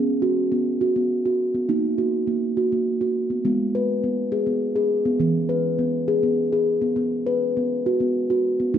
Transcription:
Already playing: B3
0.22 F#4
0.52 B3
0.81 F#4
0.96 B3
1.26 F#4
1.55 B3
1.69 A#3 D#4
1.98 F#4
2.27 A#3
2.57 F#4
2.72 A#3
3.01 F#4
3.30 B3
3.45 G#3 B3
3.75 B4
4.04 B3
4.32 G#4
4.47 B3
4.76 G#4
5.05 B3
5.20 E3 B3
5.49 B4
5.79 B3
6.08 G#4
6.23 B3
6.53 G#4
6.82 B3
6.96 B3
7.26 B4
7.57 B3
7.86 F#4
8.00 B3
8.30 F#4
8.60 B3
8.74 A#3 D#4

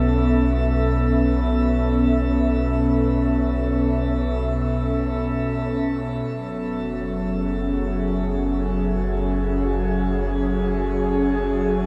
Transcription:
Already playing: B1 B2 B3 C#4 A4 E5
6.25 F#1 F#3
6.61 C#4
7.04 G#4

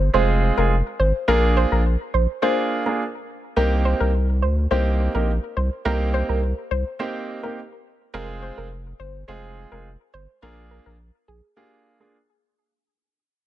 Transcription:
0.14 F1 G#3 C4 F4 G#4 C5
0.57 F1 G#3 C4 F4 G#4 A#4
1.00 G#1 C5
1.28 A#1 A#3 D4 F4 G#4 A#4
1.57 C5
1.72 A#1 A#4
2.14 A#1 C5
2.42 A#3 D4 F4 G#4 C5
2.86 A#3 D4 F4 G#4 A#4
3.56 C2 A#3 C4 D#4 G4 A#4
3.85 C5
4.00 C2 A#4
4.42 D2 C5
4.71 C2 A#3 C4 D#4 G4 C5
5.14 A#1 A#3 C4 D#4 G4 A#4
5.57 C2 C5
5.85 C2 A#3 C4 D#4 G4 A#4
6.14 C5
6.29 C2 A#4
6.71 C2 C5
6.99 A#3 C4 D#4 G4 C5
7.43 A#3 C4 D#4 G4 A#4
8.14 F1 G#3 C4 F4 G#4 A#4
8.42 C5
8.58 F1 A#4
8.99 G1 C5
9.28 F1 G#3 C4 F4 G#4 C5
9.72 F1 G#3 C4 F4 G#4 A#4
10.14 G1 C5
10.42 A#1 A#3 D4 F4 G#4 A#4
10.71 A#4
10.86 A#1 A#4
11.28 A#1 G#4
11.56 A#3 D4 F4 G4 G#4
12.00 A#3 D4 F4 G#4

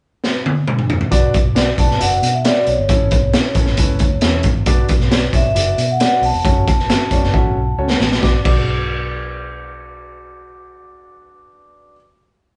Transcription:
0.24 snare
0.46 high tom
0.68 mid tom
0.79 mid tom
0.90 floor tom
1.01 floor tom
1.11 B1 D4 F#4 B4 D5, kick, closed hi-hat
1.34 kick, closed hi-hat
1.44 B1
1.55 D4 F#4 B4 D5, snare, closed hi-hat
1.78 B1 D4 F#4 B4 D5 A5, kick, closed hi-hat
1.91 snare
2.00 F#1 D4 F#4 B4 E5 F#5, closed hi-hat
2.22 B2, closed hi-hat
2.34 E5
2.44 D4 F#4 B4 D5, snare, closed hi-hat
2.66 B1 C#5, closed hi-hat
2.79 G1
2.89 A1 C#4 E4 A4 C#5, kick, closed hi-hat
3.11 kick, closed hi-hat
3.21 B1
3.33 C#4 E4 A4 E5, snare, closed hi-hat
3.55 A1 C#4 E4 A4 C#5, kick, closed hi-hat
3.66 A1, snare
3.77 C#2 C#4 E4 A4 B4, kick, closed hi-hat
3.99 D2, kick, closed hi-hat
4.21 E2 C#4 E4 A4 E5, snare, closed hi-hat
4.43 A1, kick, closed hi-hat
4.66 B1 D4 F#4 B4 D5, kick, closed hi-hat
4.89 kick, closed hi-hat
5.00 B1, snare
5.11 D4 F#4 B4 C#5, snare, closed hi-hat
5.33 B1 D4 F#4 B4 C#5 E5, kick, closed hi-hat
5.55 F#1 D4 F#4 B4 D5, closed hi-hat
5.78 B2, closed hi-hat
5.91 F#5
6.00 D4 F#4 B4 D5 F#5, snare, closed hi-hat
6.22 B1 A5, open hi-hat
6.33 E1
6.44 F#1 C#4 F#4 A4 C#5, kick, closed hi-hat
6.68 kick, closed hi-hat
6.77 G1, snare
6.89 C#4 F#4 A4 E5, snare, closed hi-hat
7.11 F#1 C#4 F#4 A4 C#5 D5, kick, closed hi-hat
7.22 F#1, snare
7.33 A1 C#4 F#4 A4 E5 F#5, kick
7.55 B1
7.78 C#2 C#4 F#4 A4 C#5 A5
7.90 snare
8.00 A1 A5, snare
8.12 snare
8.20 B1 D4 F#4 B4 D6, kick, snare
8.24 D5
8.43 B1 D4 F#4 B4 D5 D6, kick, crash

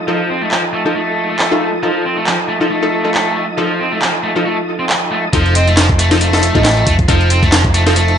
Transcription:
Already playing: F3 D#4 A4 D#5
0.08 F3 D#4 F4 A4
0.29 C4
0.42 A3
0.51 F3, clap
0.73 A3
0.85 F3 D#4 F4 A4
0.95 A3
1.30 A3
1.39 clap
1.51 D#4 F4 A4
1.61 A3
1.83 F3 D#4 F4 A4
2.05 C4
2.17 A3
2.27 F3, clap
2.48 A3
2.61 F3 D#4 F4 A4
2.70 A3
2.82 D#4 F4 A4
3.04 A3 D#4 F4 A4
3.14 clap
3.36 A3
3.57 F3 D#4 F4 A4
3.80 C4
3.92 A3
4.02 F3, clap
4.23 A3
4.36 F3 D#4 F4 A4
4.45 A3
4.79 C4
4.89 clap
5.11 A3
5.33 F1 F3 D#4 F4 A4 C5, kick, closed hi-hat
5.46 closed hi-hat
5.55 C4 D#5, closed hi-hat
5.67 A3, closed hi-hat
5.77 F3, snare, clap, closed hi-hat
5.89 kick, closed hi-hat
5.99 A3, closed hi-hat
6.11 F3 D#4 F4 A4, snare, closed hi-hat
6.21 A3, closed hi-hat
6.33 D#4 F4 A4, snare, closed hi-hat
6.43 closed hi-hat
6.55 A1 A3 D#4 F4 A4 D#5, kick, closed hi-hat
6.65 D#5, snare, clap, closed hi-hat
6.77 closed hi-hat
6.86 F1 A3, kick, closed hi-hat
6.99 kick, closed hi-hat
7.08 F1 F3 D#4 F4 A4, kick, closed hi-hat
7.21 closed hi-hat
7.30 C4, closed hi-hat
7.43 A3, kick, closed hi-hat
7.52 F3, snare, clap, closed hi-hat
7.65 kick, closed hi-hat
7.74 A3, closed hi-hat
7.86 F3 D#4 F4 A4, snare, closed hi-hat
7.96 A3, closed hi-hat
8.08 closed hi-hat

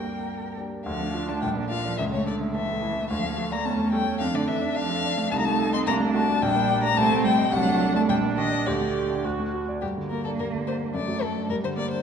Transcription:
Already playing: G2 A#3 A#4 G5
0.00 A#3 D4 G4
0.57 A#3 D4 G4
0.85 D2 F3 D4 F5
1.00 A3
1.14 F4
1.28 A3 D5 A5
1.41 A#1 G3 G5
1.56 A#3
1.70 F3 F4 F5
1.85 D5
1.97 C#2 E3 A3 E5
2.11 C#3 A3 C#5
2.26 D3 A4 D5
2.41 E5
2.54 E3 E5 A5
2.68 A4
2.82 E4
2.96 A3
3.10 D2 F3 F5
3.24 A3
3.38 A4
3.52 A#3 D5 A#5
3.65 E2 A3 C#4 A5
3.79 A3
3.93 G3 A4 G5
4.06 C#5
4.20 F2 F3 D4 F5
4.34 D3 A3 D5
4.48 E3 A4 E5
4.62 D5
4.76 F3 F5 A5
4.90 A4
5.04 D4
5.18 A3
5.31 C2 A3 D#4 A5
5.38 A#5
5.45 A3 A5
5.59 A4
5.73 C4 D#5 C6
5.86 C2 A#3 D4 A#5
6.00 A3
6.14 A3 F#4 A5
6.28 D5
6.42 A#1 G3 D4 G5
6.56 A#3
6.69 G4
6.83 A#3 D5 A#5
6.96 C2 A3 C4 A5
7.10 A3
7.24 G3 G4 G5
7.38 D#5
7.52 C2 F#3 D4 F#5
7.65 A3
7.80 A4
7.94 A3 D5 A5
8.08 A#1 G3 D4 G5
8.23 A#3
8.37 D#3 G4 D#5
8.52 D5
8.65 D2 D3 G4 D5
8.81 A3
8.96 G4
9.10 D5
9.24 D2 F#4
9.39 A3
9.54 F#4
9.69 D5
9.81 G2 A#3 G4
9.97 D3
10.10 A#3 A#4
10.24 D4 A4
10.39 G2 A#4
10.53 D3
10.67 A#3 C5
10.82 D4
10.94 F#2 A3 D5
11.08 F#3
11.22 A3 A4
11.35 D4
11.50 G2 G3 A#4
11.64 D3 C5
11.77 G3 A#3 D5
11.91 D4 C5

